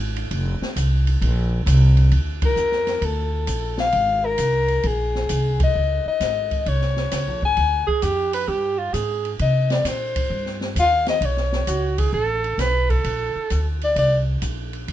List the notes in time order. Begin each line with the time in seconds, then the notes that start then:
Already playing: G#1
0.16 ride
0.31 F1, ride
0.61 muted upright bass stroke, snare
0.76 C2, hi-hat pedal, ride
1.07 ride
1.21 A#1, ride
1.66 C2, hi-hat pedal, ride
1.97 ride
2.12 D2, ride
2.42 A#4, kick, ride
2.56 F2, hi-hat pedal
2.72 snare
2.87 snare, ride
3.02 D2 A4, ride
3.47 A#1, hi-hat pedal, ride
3.78 F5, snare
3.92 G#1, ride
4.26 A#4
4.38 C2, hi-hat pedal, ride
4.68 ride
4.83 A#1 G#4, ride
5.15 snare
5.29 C2, hi-hat pedal, ride
5.60 D#5, kick, ride
5.75 C#2
6.06 D#5, muted upright bass stroke
6.20 G#1, snare, hi-hat pedal, ride
6.51 kick, ride
6.66 C2 C#5, ride
6.81 snare
6.96 snare
7.11 C#2, snare, hi-hat pedal, ride
7.27 A#1
7.42 G#1 G#5, kick
7.57 D2, ride
7.87 G#4, muted upright bass stroke, kick
8.02 F2 G4, hi-hat pedal, ride
8.33 B4, ride
8.48 G2 G4
8.78 F4
8.94 G#2 G#4, hi-hat pedal, ride
9.25 ride
9.39 C3 D#5, ride
9.70 D5, snare, ride
9.85 A#2 C5, snare, hi-hat pedal, ride
10.16 kick, ride
10.30 G2
10.46 snare
10.61 snare
10.76 D#2 F5, hi-hat pedal, ride
11.06 D#5, snare, ride
11.21 B1, ride
11.25 C#5
11.37 snare
11.52 snare
11.67 C#2 F#4, hi-hat pedal, ride
11.98 G#4, kick, ride
12.13 A1 A4
12.44 ride
12.58 B1 B4, snare, hi-hat pedal, ride
12.90 A4, kick, ride
13.04 A#1, ride
13.36 muted upright bass stroke
13.50 D2, hi-hat pedal, ride
13.81 D5, ride
13.96 C2 D5, ride
14.42 A#1, hi-hat pedal, ride
14.73 ride
14.88 D2, ride